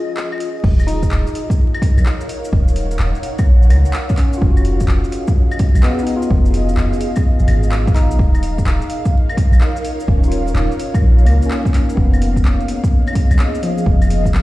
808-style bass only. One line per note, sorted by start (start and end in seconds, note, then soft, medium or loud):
0.64 1.10 D#1 medium
1.11 1.25 D#1 medium
1.97 2.04 A#1 medium
2.52 2.98 D#1 medium
2.99 3.13 D#1 medium
3.46 3.71 A#1 medium
3.70 3.84 C#2 loud
4.42 4.87 F1 loud
4.88 5.02 F1 medium
5.75 5.82 B1 medium
6.30 6.76 F1 loud
6.77 6.91 F1 medium
7.40 7.47 G#1 medium
7.48 8.11 G#1 loud
8.10 8.18 B1 medium
8.19 8.65 D#1 loud
8.65 8.80 D#1 medium
9.52 9.60 A#1 loud
10.08 10.54 D#1 loud
10.54 10.69 D#1 medium
11.02 11.27 A#1 medium
11.26 11.40 C#2 loud
11.97 12.43 F1 loud
12.44 12.58 F1 medium
13.31 13.38 B1 loud
13.86 14.32 F1 loud
14.34 14.42 F1 medium